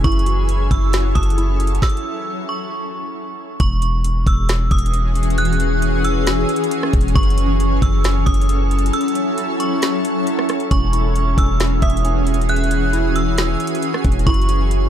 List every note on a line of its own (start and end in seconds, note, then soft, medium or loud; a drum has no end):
0.00 1.79 E4 medium
0.04 0.68 F#1 loud
0.04 1.80 F#3 medium
0.04 1.80 C#4 medium
0.04 0.70 E4 loud
0.04 1.80 A4 medium
0.04 0.67 C#6 loud
0.04 kick loud
0.04 closed hi-hat medium
0.12 closed hi-hat soft
0.19 closed hi-hat soft
0.26 0.92 F#4 medium
0.26 closed hi-hat medium
0.49 closed hi-hat medium
0.71 1.14 F#1 loud
0.71 1.36 E4 medium
0.71 1.13 E6 medium
0.71 kick medium
0.71 closed hi-hat medium
0.93 2.27 F#4 medium
0.93 snare loud
0.93 closed hi-hat medium
1.15 1.80 F#1 loud
1.15 2.49 A5 medium
1.15 1.78 D#6 medium
1.15 kick medium
1.15 closed hi-hat medium
1.23 closed hi-hat medium
1.30 closed hi-hat medium
1.38 2.71 E4 medium
1.38 closed hi-hat medium
1.60 closed hi-hat medium
1.67 closed hi-hat medium
1.75 closed hi-hat medium
1.82 2.45 E6 loud
1.82 kick loud
1.82 snare medium
1.82 closed hi-hat soft
1.90 closed hi-hat soft
1.97 closed hi-hat soft
2.49 3.56 C#6 medium
3.60 4.24 E1 loud
3.60 7.12 E3 medium
3.60 14.23 C#4 medium
3.60 7.12 F#4 medium
3.60 7.12 G#4 medium
3.60 4.23 C#6 loud
3.60 kick loud
3.60 closed hi-hat medium
3.82 closed hi-hat medium
4.04 closed hi-hat medium
4.27 4.69 E1 loud
4.27 4.69 E6 medium
4.27 kick medium
4.27 closed hi-hat medium
4.49 snare loud
4.49 closed hi-hat medium
4.71 6.45 E1 loud
4.71 5.34 D#6 medium
4.71 kick medium
4.71 closed hi-hat medium
4.78 closed hi-hat medium
4.86 closed hi-hat medium
4.94 closed hi-hat medium
5.16 closed hi-hat medium
5.23 closed hi-hat medium
5.30 closed hi-hat medium
5.38 6.01 F#6 loud
5.38 closed hi-hat medium
5.45 closed hi-hat soft
5.53 closed hi-hat soft
5.60 closed hi-hat medium
5.82 closed hi-hat medium
6.04 6.67 E6 medium
6.04 closed hi-hat medium
6.27 snare loud
6.27 closed hi-hat medium
6.49 closed hi-hat medium
6.56 closed hi-hat medium
6.64 closed hi-hat medium
6.71 closed hi-hat medium
6.83 cross-stick loud
6.93 7.15 E1 loud
6.93 kick loud
6.93 closed hi-hat medium
7.01 closed hi-hat medium
7.08 closed hi-hat medium
7.15 7.80 F#1 loud
7.15 10.67 F#3 medium
7.15 10.67 E4 medium
7.15 10.67 A4 medium
7.15 7.78 C#6 loud
7.15 kick loud
7.15 closed hi-hat medium
7.23 closed hi-hat soft
7.30 closed hi-hat soft
7.38 closed hi-hat medium
7.60 closed hi-hat medium
7.82 8.25 F#1 loud
7.82 8.24 E6 medium
7.82 kick medium
7.82 closed hi-hat medium
8.04 snare loud
8.04 closed hi-hat medium
8.26 8.91 F#1 loud
8.26 8.89 D#6 medium
8.26 kick medium
8.26 closed hi-hat medium
8.34 closed hi-hat medium
8.41 closed hi-hat medium
8.49 closed hi-hat medium
8.71 closed hi-hat medium
8.79 closed hi-hat medium
8.86 closed hi-hat medium
8.93 9.56 E6 loud
8.93 closed hi-hat medium
9.01 closed hi-hat soft
9.08 closed hi-hat soft
9.15 closed hi-hat medium
9.38 closed hi-hat medium
9.60 10.67 C#6 medium
9.60 closed hi-hat medium
9.82 snare loud
9.82 closed hi-hat medium
10.05 closed hi-hat medium
10.27 closed hi-hat medium
10.39 cross-stick loud
10.49 cross-stick loud
10.49 closed hi-hat medium
10.60 closed hi-hat soft
10.71 11.35 E1 loud
10.71 14.23 E3 medium
10.71 11.36 C#4 loud
10.71 14.23 F#4 medium
10.71 14.23 G#4 medium
10.71 11.34 C#6 loud
10.71 kick loud
10.71 closed hi-hat medium
10.93 11.59 E4 medium
10.93 closed hi-hat medium
11.16 closed hi-hat medium
11.37 11.80 E1 loud
11.37 12.03 C#4 medium
11.37 11.80 E6 medium
11.37 kick loud
11.37 closed hi-hat medium
11.60 12.92 E4 medium
11.60 snare loud
11.60 closed hi-hat medium
11.82 13.56 E1 loud
11.82 12.48 E5 medium
11.82 12.45 D#6 medium
11.82 kick medium
11.82 closed hi-hat medium
11.90 closed hi-hat medium
11.97 closed hi-hat medium
12.05 13.38 C#4 medium
12.05 closed hi-hat medium
12.27 closed hi-hat medium
12.34 closed hi-hat medium
12.41 closed hi-hat medium
12.49 13.82 E5 loud
12.49 13.12 F#6 loud
12.49 closed hi-hat medium
12.56 closed hi-hat soft
12.64 closed hi-hat soft
12.71 closed hi-hat medium
12.93 14.26 E4 loud
12.93 closed hi-hat medium
13.16 13.78 E6 medium
13.16 closed hi-hat medium
13.38 snare loud
13.38 closed hi-hat medium
13.60 closed hi-hat medium
13.67 closed hi-hat medium
13.75 closed hi-hat medium
13.83 closed hi-hat medium
13.94 cross-stick loud
14.04 14.26 E1 loud
14.04 14.27 C#4 medium
14.04 kick loud
14.04 closed hi-hat medium
14.12 closed hi-hat medium
14.19 closed hi-hat medium
14.26 14.89 F#1 loud
14.26 14.89 F#3 medium
14.26 14.89 C#4 medium
14.26 14.89 E4 medium
14.26 14.89 E4 loud
14.26 14.89 A4 medium
14.26 14.89 C#6 loud
14.26 kick loud
14.26 closed hi-hat medium
14.34 closed hi-hat soft
14.42 closed hi-hat soft
14.49 14.89 F#4 medium
14.49 closed hi-hat medium
14.71 closed hi-hat medium